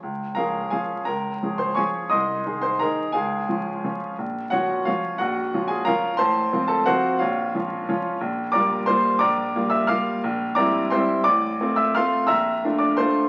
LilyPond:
\new Staff \with { instrumentName = "Grand piano" } { \time 3/4 \key des \major \tempo 4 = 176 << { r4 <bes' f'' bes''>4 <aes' f'' aes''>4 | <bes' bes''>4. <c'' c'''>8 <des'' aes'' des'''>4 | <ees'' c''' ees'''>4. <c'' c'''>8 <bes' bes''>4 | <aes' f'' aes''>2. |
r4 <ges' des'' ges''>4 <f' des'' f''>4 | <ges' ges''>4. <aes' aes''>8 <bes' f'' bes''>4 | <c'' a'' c'''>4. <a' a''>8 <ges' c'' ges''>4 | <f' des'' f''>2. |
\key g \dorian r4 <d'' bes'' d'''>4 <c'' c'''>4 | <d'' bes'' d'''>4. <e'' e'''>8 <f'' d''' f'''>4 | r4 <d'' bes'' d'''>4 <c'' g'' c'''>4 | <d'' d'''>4. <e'' e'''>8 <f'' c''' f'''>4 |
<e'' bes'' e'''>4. <d'' d'''>8 <c'' c'''>4 | } \\ { des,4 <f des' aes'>4 <f des'>4 | des,4 <f des' aes'>4 <f des' aes'>4 | c,4 <ees ees' aes'>4 <ees ees' aes'>4 | des,4 <f des' f'>4 <f des' f'>4 |
bes,,4 <f des' f'>4 <f des'>4 | bes,,4 <f des' f'>4 <f des' f'>4 | a,,4 <f c' f'>4 <f c' f'>4 | bes,,4 <f des' f'>4 <f des' f'>4 |
bes,,4 <g bes f'>4 <g bes f'>4 | bes,,4 <g bes f'>4 <g bes f'>4 | bes,,4 <g c' e'>4 <g c' e'>4 | a,,4 <a c' f'>4 <a c' f'>4 |
bes,,4 <a d' f'>4 <a d' f'>4 | } >> }